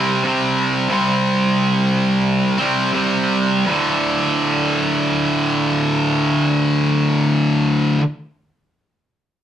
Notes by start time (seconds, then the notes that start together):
Already playing: C3 G3 C4
0.23 C3 G3 C4
0.89 C3 G3 C4
2.58 G3 C4
2.62 C3
2.92 C3 G3
2.97 C4
3.66 D2 A2
3.70 D3